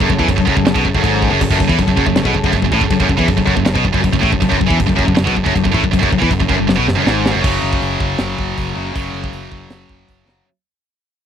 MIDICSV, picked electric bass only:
0, 0, Header, 1, 2, 480
1, 0, Start_track
1, 0, Key_signature, 3, "minor"
1, 0, Tempo, 377121
1, 1791, Time_signature, 4, 2, 24, 8
1, 14325, End_track
2, 0, Start_track
2, 0, Title_t, "Picked electric bass"
2, 0, Program_c, 0, 34
2, 4, Note_on_c, 0, 30, 98
2, 111, Note_off_c, 0, 30, 0
2, 122, Note_on_c, 0, 30, 87
2, 230, Note_off_c, 0, 30, 0
2, 246, Note_on_c, 0, 40, 89
2, 352, Note_off_c, 0, 40, 0
2, 358, Note_on_c, 0, 30, 74
2, 467, Note_off_c, 0, 30, 0
2, 482, Note_on_c, 0, 30, 81
2, 589, Note_off_c, 0, 30, 0
2, 603, Note_on_c, 0, 30, 96
2, 710, Note_off_c, 0, 30, 0
2, 722, Note_on_c, 0, 30, 82
2, 813, Note_off_c, 0, 30, 0
2, 820, Note_on_c, 0, 30, 83
2, 938, Note_off_c, 0, 30, 0
2, 957, Note_on_c, 0, 35, 97
2, 1066, Note_off_c, 0, 35, 0
2, 1080, Note_on_c, 0, 30, 77
2, 1188, Note_off_c, 0, 30, 0
2, 1202, Note_on_c, 0, 30, 96
2, 1308, Note_off_c, 0, 30, 0
2, 1316, Note_on_c, 0, 32, 96
2, 1648, Note_off_c, 0, 32, 0
2, 1666, Note_on_c, 0, 30, 93
2, 1780, Note_off_c, 0, 30, 0
2, 1795, Note_on_c, 0, 30, 81
2, 1904, Note_off_c, 0, 30, 0
2, 1913, Note_on_c, 0, 30, 93
2, 2023, Note_off_c, 0, 30, 0
2, 2035, Note_on_c, 0, 30, 80
2, 2144, Note_off_c, 0, 30, 0
2, 2155, Note_on_c, 0, 40, 98
2, 2264, Note_off_c, 0, 40, 0
2, 2273, Note_on_c, 0, 30, 80
2, 2380, Note_off_c, 0, 30, 0
2, 2387, Note_on_c, 0, 30, 79
2, 2500, Note_off_c, 0, 30, 0
2, 2508, Note_on_c, 0, 30, 97
2, 2620, Note_off_c, 0, 30, 0
2, 2628, Note_on_c, 0, 30, 87
2, 2733, Note_off_c, 0, 30, 0
2, 2741, Note_on_c, 0, 30, 74
2, 2856, Note_off_c, 0, 30, 0
2, 2864, Note_on_c, 0, 35, 90
2, 2977, Note_off_c, 0, 35, 0
2, 2983, Note_on_c, 0, 30, 87
2, 3092, Note_off_c, 0, 30, 0
2, 3100, Note_on_c, 0, 30, 93
2, 3215, Note_off_c, 0, 30, 0
2, 3225, Note_on_c, 0, 30, 84
2, 3332, Note_off_c, 0, 30, 0
2, 3340, Note_on_c, 0, 30, 88
2, 3452, Note_off_c, 0, 30, 0
2, 3459, Note_on_c, 0, 33, 98
2, 3571, Note_off_c, 0, 33, 0
2, 3578, Note_on_c, 0, 30, 82
2, 3686, Note_off_c, 0, 30, 0
2, 3693, Note_on_c, 0, 30, 83
2, 3811, Note_off_c, 0, 30, 0
2, 3818, Note_on_c, 0, 30, 104
2, 3925, Note_off_c, 0, 30, 0
2, 3933, Note_on_c, 0, 30, 83
2, 4051, Note_off_c, 0, 30, 0
2, 4061, Note_on_c, 0, 40, 102
2, 4166, Note_off_c, 0, 40, 0
2, 4174, Note_on_c, 0, 30, 75
2, 4291, Note_off_c, 0, 30, 0
2, 4300, Note_on_c, 0, 30, 80
2, 4411, Note_off_c, 0, 30, 0
2, 4419, Note_on_c, 0, 30, 97
2, 4534, Note_off_c, 0, 30, 0
2, 4543, Note_on_c, 0, 30, 86
2, 4642, Note_off_c, 0, 30, 0
2, 4650, Note_on_c, 0, 30, 77
2, 4769, Note_off_c, 0, 30, 0
2, 4778, Note_on_c, 0, 35, 90
2, 4885, Note_off_c, 0, 35, 0
2, 4893, Note_on_c, 0, 30, 85
2, 5005, Note_off_c, 0, 30, 0
2, 5012, Note_on_c, 0, 30, 100
2, 5130, Note_off_c, 0, 30, 0
2, 5137, Note_on_c, 0, 30, 86
2, 5250, Note_off_c, 0, 30, 0
2, 5257, Note_on_c, 0, 30, 92
2, 5372, Note_off_c, 0, 30, 0
2, 5386, Note_on_c, 0, 33, 98
2, 5497, Note_off_c, 0, 33, 0
2, 5508, Note_on_c, 0, 30, 78
2, 5618, Note_off_c, 0, 30, 0
2, 5626, Note_on_c, 0, 30, 90
2, 5737, Note_off_c, 0, 30, 0
2, 5750, Note_on_c, 0, 30, 106
2, 5857, Note_off_c, 0, 30, 0
2, 5864, Note_on_c, 0, 30, 79
2, 5976, Note_off_c, 0, 30, 0
2, 5984, Note_on_c, 0, 40, 95
2, 6096, Note_off_c, 0, 40, 0
2, 6110, Note_on_c, 0, 30, 84
2, 6219, Note_off_c, 0, 30, 0
2, 6225, Note_on_c, 0, 30, 80
2, 6336, Note_off_c, 0, 30, 0
2, 6347, Note_on_c, 0, 30, 100
2, 6455, Note_off_c, 0, 30, 0
2, 6462, Note_on_c, 0, 30, 89
2, 6575, Note_off_c, 0, 30, 0
2, 6587, Note_on_c, 0, 30, 80
2, 6698, Note_off_c, 0, 30, 0
2, 6709, Note_on_c, 0, 35, 95
2, 6818, Note_off_c, 0, 35, 0
2, 6832, Note_on_c, 0, 30, 86
2, 6940, Note_off_c, 0, 30, 0
2, 6950, Note_on_c, 0, 30, 97
2, 7059, Note_off_c, 0, 30, 0
2, 7069, Note_on_c, 0, 30, 83
2, 7178, Note_off_c, 0, 30, 0
2, 7196, Note_on_c, 0, 30, 91
2, 7302, Note_off_c, 0, 30, 0
2, 7310, Note_on_c, 0, 33, 102
2, 7419, Note_off_c, 0, 33, 0
2, 7427, Note_on_c, 0, 30, 88
2, 7537, Note_off_c, 0, 30, 0
2, 7550, Note_on_c, 0, 30, 88
2, 7659, Note_off_c, 0, 30, 0
2, 7671, Note_on_c, 0, 30, 103
2, 7779, Note_off_c, 0, 30, 0
2, 7792, Note_on_c, 0, 30, 83
2, 7900, Note_off_c, 0, 30, 0
2, 7917, Note_on_c, 0, 40, 98
2, 8014, Note_off_c, 0, 40, 0
2, 8021, Note_on_c, 0, 30, 82
2, 8134, Note_off_c, 0, 30, 0
2, 8146, Note_on_c, 0, 30, 81
2, 8257, Note_off_c, 0, 30, 0
2, 8265, Note_on_c, 0, 30, 104
2, 8363, Note_off_c, 0, 30, 0
2, 8371, Note_on_c, 0, 30, 76
2, 8489, Note_off_c, 0, 30, 0
2, 8508, Note_on_c, 0, 30, 80
2, 8618, Note_off_c, 0, 30, 0
2, 8628, Note_on_c, 0, 35, 98
2, 8738, Note_off_c, 0, 35, 0
2, 8752, Note_on_c, 0, 30, 78
2, 8860, Note_off_c, 0, 30, 0
2, 8875, Note_on_c, 0, 30, 92
2, 8982, Note_off_c, 0, 30, 0
2, 8992, Note_on_c, 0, 32, 90
2, 9324, Note_off_c, 0, 32, 0
2, 9354, Note_on_c, 0, 30, 88
2, 9462, Note_off_c, 0, 30, 0
2, 9469, Note_on_c, 0, 30, 91
2, 9645, Note_off_c, 0, 30, 0
2, 9708, Note_on_c, 0, 30, 93
2, 9885, Note_off_c, 0, 30, 0
2, 9951, Note_on_c, 0, 30, 88
2, 10127, Note_off_c, 0, 30, 0
2, 10182, Note_on_c, 0, 30, 87
2, 10362, Note_off_c, 0, 30, 0
2, 10427, Note_on_c, 0, 30, 90
2, 10605, Note_off_c, 0, 30, 0
2, 10676, Note_on_c, 0, 30, 83
2, 10851, Note_off_c, 0, 30, 0
2, 10917, Note_on_c, 0, 30, 80
2, 11091, Note_off_c, 0, 30, 0
2, 11154, Note_on_c, 0, 30, 85
2, 11330, Note_off_c, 0, 30, 0
2, 11399, Note_on_c, 0, 30, 92
2, 11573, Note_off_c, 0, 30, 0
2, 11625, Note_on_c, 0, 30, 80
2, 11804, Note_off_c, 0, 30, 0
2, 11871, Note_on_c, 0, 30, 76
2, 12049, Note_off_c, 0, 30, 0
2, 12111, Note_on_c, 0, 30, 87
2, 12289, Note_off_c, 0, 30, 0
2, 12593, Note_on_c, 0, 30, 83
2, 12771, Note_off_c, 0, 30, 0
2, 12839, Note_on_c, 0, 30, 81
2, 13015, Note_off_c, 0, 30, 0
2, 13058, Note_on_c, 0, 30, 77
2, 13242, Note_off_c, 0, 30, 0
2, 14325, End_track
0, 0, End_of_file